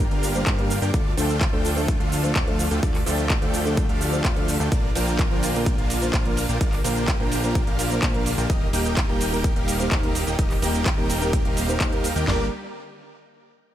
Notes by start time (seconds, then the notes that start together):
Already playing: D3 G3 A#3 F4
0.11 G1 A#3 D4 G4 A#4 F5, closed hi-hat
0.23 open hi-hat, cabasa
0.34 G2 G3 A#3 D4 C5, closed hi-hat, cabasa
0.47 G2 A#3 D4 G4 A#4 F5, kick, clap, closed hi-hat, cabasa
0.58 G2 G3 A#3 D4 A#4, closed hi-hat
0.70 open hi-hat, cabasa
0.82 G2 A#3 D4 G4 A#4 G5, closed hi-hat, cabasa
0.94 D2 D3 F3 A3 D4 F4 A4 D5, kick, closed hi-hat, cabasa
1.17 D2 F3 A3 D4 F4 A4 G5, open hi-hat, cabasa
1.29 closed hi-hat, cabasa
1.41 kick, clap, closed hi-hat, cabasa
1.52 D2 F3 A3 D4 F4 A4 G5
1.65 open hi-hat, cabasa
1.76 F3 A3 D4 A4, open hi-hat, cabasa
1.88 kick, closed hi-hat, cabasa
2.00 D2 A3 D4 F4 A4 F5, closed hi-hat
2.12 open hi-hat, cabasa
2.23 F3 A3 D4 C5, closed hi-hat, cabasa
2.36 D2 A3 D4 F4 A4 F5, kick, clap, closed hi-hat, cabasa
2.47 F3 A3 D4 A4, closed hi-hat
2.59 open hi-hat, cabasa
2.71 D2 A3 D4 F4 A4 G5, closed hi-hat, cabasa
2.83 A3 D4 F4 G4 A4 D5, kick, closed hi-hat, cabasa
2.95 clap, open hi-hat
3.06 D2 F3 A3 D4 F4 A4 G5, open hi-hat, cabasa
3.18 closed hi-hat, cabasa
3.30 kick, clap, closed hi-hat, cabasa
3.41 D2 F3 A3 D4 F4 A4 G5, closed hi-hat
3.54 open hi-hat, cabasa
3.65 F3 A3 D4 A4, closed hi-hat, cabasa
3.77 kick, closed hi-hat, cabasa
3.89 D2 A3 D4 F4 A4 F5, closed hi-hat
4.01 open hi-hat, cabasa
4.12 F3 A3 D4 C5, closed hi-hat, cabasa
4.25 D2 A3 D4 F4 A4 F5, kick, clap, closed hi-hat, cabasa
4.36 F3 A3 D4 A4, closed hi-hat
4.48 open hi-hat, cabasa
4.60 D2 A3 D4 F4 A4 G5, closed hi-hat, cabasa
4.72 A#1 A#3 D4 F4 A#4 D5, kick, closed hi-hat, ride, cabasa
4.95 A#1 A#2 F3 A#3 D4 F4 A#4 G5, open hi-hat, ride, cabasa
5.07 closed hi-hat, cabasa
5.19 kick, clap, closed hi-hat, ride, cabasa
5.30 A#1 A#2 F3 A#3 D4 F4 A#4 G5
5.43 open hi-hat, ride, cabasa
5.54 A#2 F3 A#3 D4 A#4, open hi-hat, cabasa
5.66 kick, closed hi-hat, ride, cabasa
5.78 A#1 A#3 D4 F4 A#4 F5, closed hi-hat
5.90 open hi-hat, ride, cabasa
6.01 A#2 F3 A#3 D4 C5, closed hi-hat, cabasa
6.14 A#3 D4 F4 A#4 F5, kick, clap, closed hi-hat, ride, cabasa
6.25 A#2 F3 A#3 D4 A#4, closed hi-hat
6.37 open hi-hat, ride, cabasa
6.49 A#1 A#3 D4 F4 A#4 G5, closed hi-hat, cabasa
6.61 A#3 D4 F4 G4 A#4 D5, kick, closed hi-hat, ride, cabasa
6.73 clap, open hi-hat
6.84 A#1 A#2 F3 A#3 D4 F4 A#4 G5, open hi-hat, ride, cabasa
6.96 closed hi-hat, cabasa
7.08 kick, clap, closed hi-hat, ride, cabasa
7.19 A#1 A#2 F3 A#3 D4 F4 A#4 G5
7.32 open hi-hat, ride, cabasa
7.43 A#2 F3 A#3 D4 A#4, closed hi-hat, cabasa
7.55 kick, closed hi-hat, ride, cabasa
7.67 A#1 A#3 D4 F4 A#4 F5, closed hi-hat
7.79 open hi-hat, ride, cabasa
7.90 A#2 F3 A#3 D4 C5, closed hi-hat, cabasa
8.03 A#3 D4 F4 A#4 F5, kick, clap, closed hi-hat, ride, cabasa
8.14 A#2 F3 A#3 D4 A#4, closed hi-hat
8.26 open hi-hat, ride, cabasa
8.38 A#1 A#3 D4 F4 A#4 G5, closed hi-hat, cabasa
8.50 D#3 G3 A#3 D#4 G4 A#4 D#5, kick, closed hi-hat, ride, cabasa
8.73 D#1 G3 A#3 D#4 G4 A#4 G5, open hi-hat, ride, cabasa
8.85 closed hi-hat, cabasa
8.97 kick, clap, closed hi-hat, ride, cabasa
9.08 D#1 G3 A#3 D#4 G4 A#4 G5
9.21 open hi-hat, ride, cabasa
9.32 G3 A#3 D#4 A#4, open hi-hat, cabasa
9.44 kick, closed hi-hat, ride, cabasa
9.56 D#1 A#3 D#4 G4 A#4 F5, closed hi-hat
9.68 open hi-hat, ride, cabasa
9.79 G3 A#3 D#4 C5, closed hi-hat, cabasa
9.91 A#3 D#4 G4 A#4 F5, kick, clap, closed hi-hat, ride, cabasa
10.03 G3 A#3 D#4 A#4, closed hi-hat
10.15 open hi-hat, ride, cabasa
10.27 D#1 A#3 D#4 G4 A#4 G5, closed hi-hat, cabasa
10.39 D#1 A#3 C4 D#4 G4 A#4 D#5, kick, closed hi-hat, ride, cabasa
10.51 clap, open hi-hat
10.62 D#1 G3 A#3 D#4 G4 A#4 G5, open hi-hat, ride, cabasa
10.74 closed hi-hat, cabasa
10.86 kick, clap, closed hi-hat, ride, cabasa
10.97 D#1 G3 A#3 D#4 G4 A#4 G5
11.10 open hi-hat, ride, cabasa
11.21 G3 A#3 D#4 A#4, closed hi-hat, cabasa
11.33 kick, closed hi-hat, ride, cabasa
11.45 D#1 A#3 D#4 G4 A#4 F5, closed hi-hat
11.57 open hi-hat, ride, cabasa
11.68 G3 A#3 D#4 C5, closed hi-hat, cabasa
11.80 D#2 A#3 D#4 G4 A#4 F5, kick, clap, closed hi-hat, ride, cabasa
11.92 G3 A#3 D#4 A#4, closed hi-hat
12.04 open hi-hat, ride, cabasa
12.16 D#2 A#3 D#4 G4 A#4 G5, closed hi-hat, cabasa
12.26 G1 D3 G3 A#3 D4 G4 A#4 D5, snare, clap, floor tom